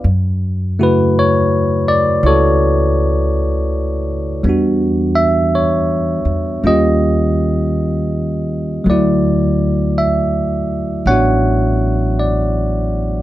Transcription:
0.04 F#2
0.79 C#3 A3 E4 F#4 B4
1.19 C#5
1.88 D5
2.23 C#2 E4 C#5
2.27 F#4 A4
4.43 E2 G3 B3 D4
4.49 F#4
5.15 E5
5.55 C#5
6.25 E2
6.63 D#2 G3 A#3 C#4 F4 D#5
6.68 G4
8.84 D2 F#3 A3
8.90 E4 F#4 D5
9.98 E5
11.06 A1 B3 D4 C#5 F#5
11.11 F#4
12.20 D5

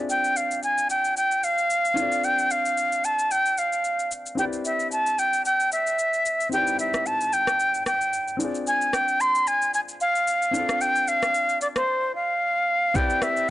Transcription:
Already playing: C4 D4 F4 G#4 D5
0.10 G5, shaker
0.24 shaker
0.36 F5, shaker
0.51 shaker
0.63 G#5, shaker
0.78 shaker
0.90 G5, shaker
1.05 shaker
1.17 G5, shaker
1.31 shaker
1.43 F5, shaker
1.58 shaker
1.70 shaker
1.85 shaker
1.94 C4 D4 F4, shaker
2.00 A4 D5
2.12 shaker
2.24 G5, shaker
2.39 shaker
2.51 F5, shaker
2.65 shaker
2.77 shaker
2.92 shaker
3.04 A5, shaker
3.19 shaker
3.31 G5, shaker
3.46 shaker
3.58 F5, shaker
3.73 shaker
3.84 shaker
3.99 shaker
4.11 shaker
4.26 shaker
4.35 C4 D4 G4 G5, shaker
4.41 E4 B4 D5
4.53 shaker
4.65 E5, shaker
4.80 shaker
4.92 A5, shaker
5.06 shaker
5.18 G5, shaker
5.33 shaker
5.45 G5, shaker
5.60 shaker
5.72 E5, shaker
5.87 shaker
5.99 shaker
6.14 shaker
6.26 shaker
6.40 shaker
6.49 C4 D#4 G4 G5, shaker
6.55 E4 B4 D5
6.67 shaker
6.79 E5, shaker
6.94 cross-stick, shaker
7.06 A5, shaker
7.21 shaker
7.33 G5, shaker
7.47 cross-stick, shaker
7.60 shaker
7.74 shaker
7.86 G5, cross-stick, shaker
8.01 shaker
8.13 shaker
8.28 shaker
8.37 C4 D4 F4, shaker
8.43 G#4 D5
8.55 shaker
8.67 G#5, shaker
8.81 shaker
8.93 G5, cross-stick, shaker
9.08 shaker
9.20 C6, shaker
9.35 shaker
9.47 G#5, shaker
9.62 shaker
9.74 G#5, shaker
9.89 shaker
10.01 F5, shaker
10.15 shaker
10.27 shaker
10.42 shaker
10.51 C4 D4 F4, shaker
10.57 A4 D5
10.69 cross-stick, shaker
10.81 G5, shaker
10.96 shaker
11.08 F5, shaker
11.23 cross-stick, shaker
11.34 shaker
11.49 shaker
11.61 D5, shaker
11.76 C5, cross-stick, shaker
12.15 F5
12.94 C4 E4 G4 B4 D5 G5, kick, shaker
13.10 shaker
13.22 E5, cross-stick, shaker
13.37 shaker

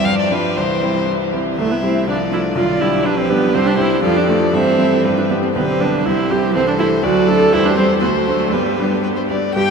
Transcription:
0.05 G2 F3 F5
0.19 D5
0.31 G3 D4 F4 B4
0.56 C2 E3 C5
0.83 G3 C4 E4
1.33 G3 C4 E4
1.57 C2 A3 E4 E5
1.71 B3
1.82 G3 C4 E4 G4
2.07 C2 F3 D4 F4 D5
2.31 A3 D4 E4 F4
2.55 B1 D3 F4 D5
2.80 G3 D4 E4 G4
3.05 F3 D4 G4 B4
3.18 C4
3.30 G3 B3 D4 G4
3.54 C2 G3 C4 G4 C5
3.67 D4
3.78 G3 C4 E4 G4
4.03 F2 F3 F4 A4 D5
4.17 D4
4.29 A3 D4 F4
4.53 G2 E3 C4 A4 E5
4.78 G3 C4 E4
5.04 G2 G4 B4
5.18 D4
5.30 G3 B3 G4
5.43 C4
5.54 B1 D3 B3 G4 B4
5.68 C4
5.80 G3 B3 D4 G4
6.04 C2 G3 E4 G4 C5
6.30 C4 E4 G4
6.54 C2 E3 C4 A4 C5
6.68 D4
6.79 A3 E4 A4
7.03 D2 F#3 F#4 A4 D5
7.28 A3 D4 A4
7.52 E2 G3 E4 G4 C5
7.65 D4
7.77 G3 C4 C5
8.00 D2 A3 B3 F#4 C5
8.27 F#3 A3 D4 C5
8.52 G2 G3 B3 G4 B4
8.79 G3 D4 B4
9.03 B4
9.17 C5
9.29 G3 D4 B4 D5
9.55 G2 G3 G4 G5

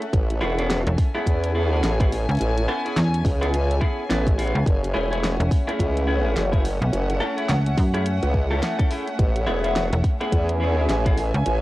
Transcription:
Already playing: C#4 A4 E5 F#5
0.02 closed hi-hat
0.13 A1 C#4, kick, closed hi-hat
0.30 closed hi-hat
0.41 E1 B3 C#4 E4 G#4
0.58 B3 C#4 E4 G#4, closed hi-hat
0.70 cross-stick, snare, closed hi-hat
0.87 E1 G#5, closed hi-hat
0.98 kick, open hi-hat
1.15 B3 C#4 E4 G#4, cross-stick
1.27 E2, kick, closed hi-hat
1.44 closed hi-hat
1.55 B3 C#4 E4 G#4
1.72 B3 C#4 E4 G#4
1.83 A1, snare, closed hi-hat
2.00 B3 C#4 E4 G#4, kick, cross-stick, closed hi-hat
2.12 open hi-hat
2.29 C#2, closed hi-hat
2.31 closed hi-hat
2.35 closed hi-hat
2.37 closed hi-hat
2.39 A1, closed hi-hat
2.41 closed hi-hat
2.58 closed hi-hat
2.68 B3 C#4 E4 A4
2.85 B3 C#4 E4 G#4, closed hi-hat
2.97 E2, snare, closed hi-hat
3.14 closed hi-hat
3.25 C#2, kick, open hi-hat
3.41 B3 C#4 E4 G#4, cross-stick, closed hi-hat
3.54 closed hi-hat
3.71 closed hi-hat
3.81 B3 C#4 E4 G#4, kick
4.09 A1 B3 C#4 E4 B4, snare, closed hi-hat
4.27 kick, closed hi-hat
4.38 B3 C#4 E4 G#4, open hi-hat
4.47 closed hi-hat
4.55 C#2
4.66 F#1, kick, closed hi-hat
4.84 closed hi-hat
4.94 E1 A3 C#4 E4 G#4
5.01 E5
5.11 A3 C#4 E4 G#4, closed hi-hat
5.24 F#5, cross-stick, snare, closed hi-hat
5.40 E1, closed hi-hat
5.51 kick, open hi-hat
5.67 A3 C#4 E4 G#4, cross-stick, closed hi-hat
5.79 C#2, kick, closed hi-hat
5.97 closed hi-hat
6.07 A3 C#4 E4 G#4
6.24 A3 C#4 E4 G#4
6.36 F#1, snare, closed hi-hat
6.52 A3 C#4 E4 G#4, kick, cross-stick, closed hi-hat
6.65 open hi-hat
6.82 B1, closed hi-hat
6.93 F#1, closed hi-hat
7.10 closed hi-hat
7.20 A3 C#4 E4 A4
7.37 A3 C#4 E4 G#4, closed hi-hat
7.49 C#2, snare, closed hi-hat
7.66 closed hi-hat
7.78 F#2, kick, open hi-hat
7.94 A3 C#4 E4 G#4, cross-stick, closed hi-hat
8.06 closed hi-hat
8.23 C#2, closed hi-hat
8.34 kick
8.51 A3 C#4 E4 A4
8.63 snare, closed hi-hat
8.79 A3 C#4 E4 A4, kick, closed hi-hat
8.90 A3 C#4 E4 G#4, open hi-hat
9.07 closed hi-hat
9.19 A1, kick, closed hi-hat
9.36 closed hi-hat
9.47 E1 B3 C#4 E4 G#4
9.64 B3 C#4 E4 G#4, closed hi-hat
9.76 cross-stick, snare, closed hi-hat
9.93 E1, closed hi-hat
10.04 kick, open hi-hat
10.21 B3 C#4 E4 G#4 G#5, cross-stick, closed hi-hat
10.32 E2, kick, closed hi-hat
10.49 closed hi-hat
10.60 B3 C#4 E4 G#4
10.77 B3 C#4 E4 G#4
10.89 A1, snare, closed hi-hat
11.05 B3 C#4 E4 G#4, kick, cross-stick, closed hi-hat
11.18 open hi-hat
11.34 C#2, closed hi-hat
11.46 A1, closed hi-hat

